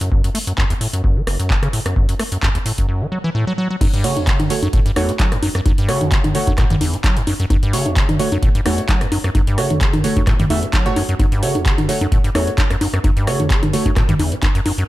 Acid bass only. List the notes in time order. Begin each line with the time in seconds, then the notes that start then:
0.01 F#2
0.24 F#2
0.35 A3
0.47 F#2
0.58 F#2
0.70 E2
0.81 A2
0.93 F#2
1.16 E3
1.27 F#1
1.40 F#2
1.50 B2
1.63 C#3
1.73 A2
1.86 F#2
2.09 F#2
2.19 A3
2.32 F#2
2.42 F#2
2.55 E2
2.66 A2
2.78 F#2
2.89 F#2
3.01 E3
3.12 F#3
3.24 E3
3.35 A2
3.47 F#3
3.58 F#3
3.70 F#3
3.81 F#2
3.93 G2
4.04 C#3
4.17 E2
4.27 C#3
4.39 F#2
4.50 F#3
4.63 F#2
4.73 A2
4.86 G2
4.96 E2
5.09 A2
5.19 F#3
5.32 F#2
5.43 F#2
5.55 F#2
5.66 F#2
5.78 G2
5.89 C#3
6.01 E2
6.12 C#3
6.24 F#2
6.35 F#3
6.47 F#2
6.58 A2
6.70 G2
6.81 E2
6.94 A2
7.04 F#3
7.17 F#2
7.27 F#2
7.40 F#2
7.50 F#2
7.63 G2
7.73 C#3
7.86 E2
7.97 C#3
8.09 F#2
8.20 F#3
8.32 F#2
8.43 A2
8.55 G2
8.66 E2
8.78 A2
8.89 F#3
9.01 F#2
9.12 F#2
9.24 F#2
9.35 F#2
9.47 G2
9.58 C#3
9.70 E2
9.81 C#3
9.94 F#2
10.04 F#3
10.17 F#2
10.27 A2
10.40 G2
10.50 E2
10.63 A2
10.73 F#3
10.86 F#2
10.96 F#2
11.09 F#2
11.20 F#2
11.32 G2
11.43 C#3
11.55 E2
11.66 C#3
11.78 F#2
11.89 F#3
12.01 F#2
12.12 A2
12.24 G2
12.35 E2
12.47 A2
12.58 F#2
12.71 F#2
12.81 F#2
12.94 F#2
13.04 F#2
13.17 G2
13.27 C#3
13.40 E2
13.50 C#3
13.63 F#2
13.73 F#3
13.86 F#2
13.96 A2
14.09 G2
14.19 E2
14.32 A2
14.42 F#2
14.55 F#2
14.66 F#2
14.78 F#2